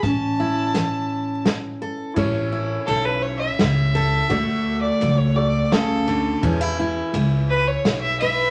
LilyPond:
<<
  \new Staff \with { instrumentName = "Fiddle" } { \time 3/4 \key a \major \tempo 4 = 84 a''2 r4 | r4 a'16 b'16 cis''16 e''4~ e''16~ | e''8. d''8 cis''16 d''8 a'4 | r4. b'16 cis''8 e''16 e''8 | }
  \new Staff \with { instrumentName = "Upright piano" } { \time 3/4 \key a \major r2. | <e' a' cis''>2. | <fis' a' d''>4. <fis' a' cis'''>4. | <e' gis' b'>2. | }
  \new Staff \with { instrumentName = "Steel-string acoustic guitar" } { \clef bass \time 3/4 \key a \major << { cis'8 e'2 a'8 | cis'8 e'2 a'8 | a2. | cis'16 e'16 e'2 b'8 | } \\ { a,4 e4 a,4 | a,4 e4 a,4 | d4 fis4 cis8 d8 | e4 gis4 b,4 | } >> }
  \new Staff \with { instrumentName = "Upright bass" } { \clef bass \time 3/4 \key a \major a,,2. | a,,4 b,,4 cis,4 | d,4 cis,4 d,4 | e,4 cis,4 b,,4 | }
  \new DrumStaff \with { instrumentName = "Drums" } \drummode { \time 3/4 <hh bd>4 <hh sn>4 <hh sn>4 | <bd cymr>4 cymr4 <cymr sn>8 cymr8 | <bd cymr>4 cymr4 <cymr sn>8 cymr8 | <bd cymr>4 cymr4 <cymr sn>8 cymr8 | }
>>